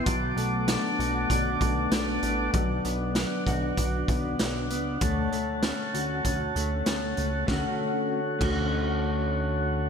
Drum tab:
CC |--------|--------|--------|---x----|
HH |xxxxxxxx|xxxxxxxx|xxxxxxxx|--------|
SD |--o---o-|--o---o-|--o---o-|o-------|
BD |o---oo--|o--ooo--|o---o---|o--o----|